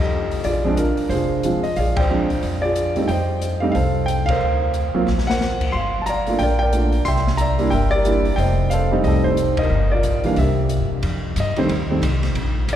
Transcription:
Already playing: F2
0.00 G4 A4 D#5
0.31 muted upright bass stroke, open hi-hat
0.44 A#1 F4 G#4 D5, open hi-hat
0.64 F3 G#3 C4 D4
0.77 D4 F4 A#4, closed hi-hat
0.97 muted upright bass stroke, open hi-hat
1.09 F1 F4 G#4 C5, open hi-hat
1.43 F3 G#3 C4 F4, closed hi-hat
1.63 D#5, muted upright bass stroke, open hi-hat
1.76 A#1 G#4 D5 F5, open hi-hat
1.96 C5 D5 G5, kick, ride
2.10 F3 G#3 C4 D4
2.30 kick, open hi-hat
2.43 F2, open hi-hat
2.62 F4 G#4 D5
2.76 closed hi-hat
2.96 G3 A3 C4 D#4, open hi-hat
3.08 F2 C5 D#5 G5, open hi-hat
3.42 closed hi-hat
3.60 G3 A3 C4 D#4 F5
3.72 C2 A4 C5 F5, open hi-hat
4.06 G5, closed hi-hat
4.26 A#4 F5, kick, ride
4.30 C5
4.40 D2
4.74 closed hi-hat
4.94 F#3 A#3 C4 F4, muted upright bass stroke
5.07 A#1, snare
5.18 snare
5.27 A#4 C5 F#5, snare
5.41 snare
5.61 kick, crash
5.72 G1 F5 C6
6.02 A5
6.06 D5 F5 A#5, closed hi-hat
6.27 A3 A#3 D4 F4, open hi-hat
6.39 A#1 G5, open hi-hat
6.43 A#4 D5
6.59 A#4 D5 G5
6.73 A3 A#3 D4 F4, closed hi-hat
6.92 open hi-hat
7.05 C2 E5 G5 C6, open hi-hat
7.16 snare
7.27 snare
7.37 E5 A#5, closed hi-hat
7.41 D5
7.59 G3 A#3 D4 E4, open hi-hat
7.70 G1 A#4 E5 G5, open hi-hat
7.91 G4 A#4 D5
8.05 G3 A#3 D4 E4, closed hi-hat
8.25 open hi-hat
8.36 F1 C5 D#5 G5, open hi-hat
8.70 A4 C5 F5, closed hi-hat
8.91 G3 A3 C4 D#4
9.04 C2 G4 A4 D#5, open hi-hat
9.24 D#4 A4 C5
9.37 closed hi-hat
9.57 A#4 D#5, kick, ride
9.70 G1
9.92 F4 A#4 D5
10.03 A#1, closed hi-hat
10.24 E3 G3 A#3 D4 F5, open hi-hat
10.36 C2 E5, open hi-hat
10.40 G4 A#4
10.69 closed hi-hat
10.81 G2
10.91 C3
11.03 F2, ride
11.36 G2, hi-hat pedal, ride
11.40 D#5
11.56 D#3 G3 A3 C4 C5, ride
11.69 D#2, ride
11.90 D#3 G3 A3 C4
12.02 C2, hi-hat pedal, ride
12.23 snare, ride
12.35 A#1, ride
12.68 G#1, hi-hat pedal, ride

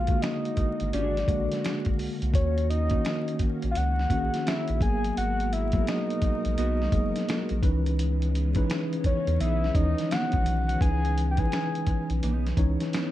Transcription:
Already playing: A#1 D3 G#3 A#3 F#4 F5
0.07 D3 G#3 A#3 F#4, kick, closed hi-hat
0.22 D#5, finger snap, snare, closed hi-hat
0.45 closed hi-hat
0.57 G#1, kick, closed hi-hat
0.80 G#1, closed hi-hat
0.93 G#1 D4 F#4 G#4 D5, closed hi-hat
1.17 snare, closed hi-hat
1.27 A#1 D3 G#3 A#3 F#4, kick, closed hi-hat
1.52 snare, closed hi-hat
1.64 D4 F#4 G#4, finger snap, snare, closed hi-hat
1.85 kick, closed hi-hat
1.99 C2, open hi-hat
2.22 C2, closed hi-hat
2.33 D#2 D#3 A#3 C#4 F#4 C#5, kick, closed hi-hat
2.58 closed hi-hat
2.70 D#5, closed hi-hat
2.90 D#3 A#3 C#4 F#4, kick, closed hi-hat
3.05 finger snap, snare, closed hi-hat
3.28 closed hi-hat
3.39 A#1, kick, closed hi-hat
3.62 A#1, closed hi-hat
3.71 F5
3.75 C#2 F#5, closed hi-hat
3.99 snare
4.10 A#1 D#3 A#3 C#4 F#4 A#4, kick, closed hi-hat
4.17 G#4
4.34 snare, closed hi-hat
4.46 C#4 F#4 A#4 E5, finger snap, snare, closed hi-hat
4.68 A#1, closed hi-hat
4.80 G#1 B2 F#3 G#3 A#3 B3 F#4 G#4 A#4 G#5, kick, closed hi-hat
5.04 closed hi-hat
5.17 G#1 F#5, closed hi-hat
5.40 closed hi-hat
5.53 E5, closed hi-hat
5.72 F#3 A#3 B3 F#4, kick, closed hi-hat
5.81 G#4
5.87 D#5, finger snap, snare, closed hi-hat
6.10 closed hi-hat
6.22 A#1, kick, closed hi-hat
6.45 A#1, closed hi-hat
6.57 B1 B3 F#4 A#4 D#5, closed hi-hat
6.82 snare
6.92 F#1 F#3 A#3 B3 G#4, kick, closed hi-hat
7.16 snare, closed hi-hat
7.28 B3 F#4 A#4, finger snap, snare, closed hi-hat
7.49 A#1, closed hi-hat
7.62 C#2 C#3 E3 G#3 B3 C#4 D#4 B4, kick, closed hi-hat
7.86 closed hi-hat
7.99 closed hi-hat
8.22 closed hi-hat
8.35 closed hi-hat
8.55 E3 C#4 D#4 B4, kick, closed hi-hat
8.70 finger snap, snare, closed hi-hat
8.93 closed hi-hat
9.04 E2 C#5, kick, closed hi-hat
9.27 E2, closed hi-hat
9.40 B1 E3 B3 D#4 E5, closed hi-hat
9.64 snare
9.74 D#2 D#3 C#4 D#4 C#5 D#5, kick, closed hi-hat
9.81 E3
9.98 snare, closed hi-hat
10.11 E3 B3 D#4 F#5, finger snap, snare, closed hi-hat
10.32 B1, kick, closed hi-hat
10.46 B1, closed hi-hat
10.68 F#5, closed hi-hat
10.80 C#2 E3 C#4 D#4 B4 G#5, kick, closed hi-hat
11.05 closed hi-hat
11.18 closed hi-hat
11.31 G5
11.37 E3 C#4 D#4 B4 G#5, kick, closed hi-hat
11.52 finger snap, snare, closed hi-hat
11.75 closed hi-hat
11.86 B1, kick, closed hi-hat
12.10 B1, closed hi-hat
12.23 B1 E3 B3 D#4, closed hi-hat
12.47 snare, closed hi-hat
12.56 C#2 E3 C#4 D#4 C#5, kick, closed hi-hat
12.80 snare, closed hi-hat
12.93 E3 B3 D#4, finger snap, snare, closed hi-hat

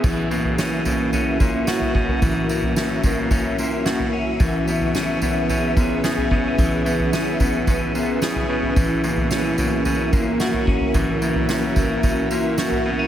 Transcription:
Already playing: C#4
0.03 B2 E3 C#4 E4 F#4 A#4 E5, kick, floor tom, crash, tambourine
0.30 B2 A#3, tambourine
0.45 floor tom
0.58 B2 C#4, snare, tambourine
0.85 B2 A#3, floor tom, tambourine
1.13 B2 C#4, floor tom, tambourine
1.40 A#2 A#3, kick, tambourine
1.67 B2 F#4, snare, tambourine
1.81 floor tom
1.95 B2 C#4, kick
2.08 floor tom
2.22 B2 E3, kick, floor tom, tambourine
2.49 B2 A#3, tambourine
2.63 floor tom
2.76 B2 C#4, snare, tambourine
3.03 B2 A#3, kick, floor tom, tambourine
3.31 B2 C#4, kick, floor tom, tambourine
3.58 A#2 A#3, tambourine
3.85 B2 F#4, snare, tambourine
3.99 floor tom
4.13 C#4
4.40 B2 E3 E4 G#4 B4, kick, floor tom, tambourine
4.67 B2 B3, tambourine
4.81 floor tom
4.95 B2 C#4, snare, tambourine
5.22 B2 B3, floor tom, tambourine
5.49 B2 C#4, floor tom, tambourine
5.77 A#2 B3, kick, tambourine
6.04 B2 G#4, snare, tambourine
6.17 floor tom
6.31 B2 C#4, kick
6.58 B2 E3, kick, floor tom, tambourine
6.85 B2 B3, tambourine
6.99 floor tom
7.12 B2 C#4, snare, tambourine
7.40 B2 B3, kick, floor tom, tambourine
7.67 B2 C#4, kick, floor tom, tambourine
7.94 A#2 B3, tambourine
8.21 B2 G#4, snare, tambourine
8.36 floor tom
8.49 B2 C#4
8.63 floor tom
8.76 B2 E3 F#4 A#4 E5, kick, floor tom, tambourine
9.04 B2 A#3, tambourine
9.17 floor tom
9.31 B2 C#4, snare, tambourine
9.58 B2 A#3, floor tom, tambourine
9.85 B2 C#4, floor tom, tambourine
10.13 A#2 A#3, kick, tambourine
10.40 B2 F#4, snare, tambourine
10.54 floor tom
10.67 C#4, kick
10.81 floor tom
10.94 B2 E3, kick, floor tom, tambourine
11.22 B2 A#3, tambourine
11.35 floor tom
11.49 B2 C#4, snare, tambourine
11.76 B2 A#3, kick, floor tom, tambourine
12.03 B2 C#4, kick, floor tom, tambourine
12.31 A#2 A#3, tambourine
12.58 B2 F#4, snare, tambourine
12.71 floor tom
12.85 B2 B3
12.99 C#4

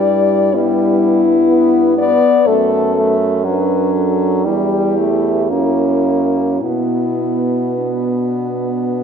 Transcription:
Already playing: G2 G3 E4 D5
0.54 G3 B3 E4
1.49 B3
1.98 B3 D5
2.47 F#2 A3 A4
2.96 A3
3.45 F#3 D4 B4
3.95 A4
4.44 E2 G3 E4 G4
4.98 A3
5.51 F#2 A#3 C#4 E4
6.61 B2 B3 E4
7.77 D4

